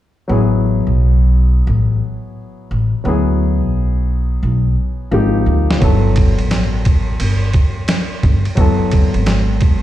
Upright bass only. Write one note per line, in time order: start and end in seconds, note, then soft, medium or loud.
0.29 0.81 A1 medium
0.87 1.64 B1 medium
1.67 1.98 A1 medium
2.71 2.91 A1 medium
3.05 3.62 D2 medium
3.62 4.39 B1 medium
4.43 4.74 B1 medium
5.12 5.43 G#1 medium
5.46 5.83 D2 medium
5.82 6.33 G1 loud
6.38 7.15 A1 medium
7.20 7.51 G1 medium
8.23 8.43 G1 medium
8.57 9.09 F#1 medium
9.14 9.82 G#1 medium